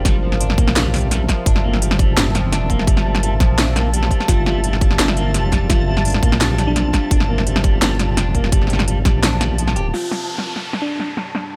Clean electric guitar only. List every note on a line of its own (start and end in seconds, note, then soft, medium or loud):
0.05 0.16 G3 medium
0.23 0.40 F3 medium
0.40 0.57 D4 medium
0.58 0.74 A#3 medium
0.76 0.92 G3 medium
0.93 1.10 G3 medium
1.11 1.21 G3 medium
1.29 1.46 F3 medium
1.47 1.63 D4 medium
1.64 1.80 A#3 medium
1.82 1.98 G3 medium
1.99 2.16 G3 medium
2.17 2.27 G3 medium
2.34 2.51 F3 medium
2.52 2.69 D4 medium
2.70 2.86 A#3 medium
2.87 3.04 G3 medium
3.05 3.22 G3 medium
3.23 3.33 G3 medium
3.40 3.57 F3 medium
3.58 3.75 D4 medium
3.76 3.92 A#3 medium
3.93 4.10 G3 medium
4.11 4.27 G3 medium
4.29 4.45 G3 medium
4.46 4.63 G3 medium
4.64 4.74 G3 medium
4.82 4.99 G3 medium
4.99 5.16 D4 medium
5.17 5.33 A#3 medium
5.35 5.51 G3 medium
5.52 5.69 G3 medium
5.70 5.80 G3 medium
5.88 6.04 G3 medium
6.06 6.22 D4 medium
6.23 6.39 A#3 medium
6.41 6.58 G3 medium
6.59 6.75 G3 medium
6.76 6.86 G3 medium
6.94 7.10 G3 medium
7.11 7.28 D4 medium
7.29 7.45 A#3 medium
7.47 7.63 G3 medium
7.64 7.81 G3 medium
7.82 7.92 G3 medium
8.00 8.16 G3 medium
8.17 8.34 D4 medium
8.35 8.51 A#3 medium
8.52 8.69 G3 medium
8.70 8.86 G3 medium
8.88 8.98 G3 medium
9.05 9.22 G3 medium
9.23 9.40 D4 medium
9.41 9.57 G3 medium
9.58 9.75 F3 medium
9.76 9.86 G4 loud